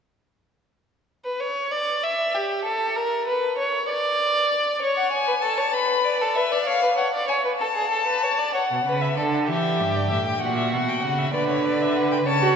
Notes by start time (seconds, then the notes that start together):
1.24 B4
1.40 C#5
1.71 D5
2.03 E5
2.35 G4
2.65 A4
2.96 A#4
3.28 B4
3.58 C#5
3.89 D5
4.82 C#5
4.97 F#5
5.12 G#5
5.28 B4
5.42 A4 A5
5.58 C#5
5.73 B4 B5
6.04 D5
6.21 A4
6.35 B4 E5
6.52 D5
6.65 C#5 F5
6.83 B4
6.97 C#5 F#5
7.14 D5
7.28 C#5 G#5
7.45 B4
7.59 A4 A5
7.75 G#4
7.91 A4
8.07 B4
8.23 C#5
8.38 D5
8.54 C#5 F#5
8.71 B2
8.86 C#3 B4
9.01 E5
9.17 D3 A4 D5
9.33 F#5
9.48 E3 G4 E5
9.80 G2
9.95 D5
10.11 A2 E5
10.26 G5
10.41 A#2 F#4 F#5
10.56 E5
10.73 B2 F#5
10.89 G5
11.03 C#3 F#5
11.19 E5
11.34 D3 B4 D5
11.49 C#5
11.66 D5
11.81 E5
11.97 F#5
12.12 G5
12.26 C#3 C#5 A5
12.42 F#4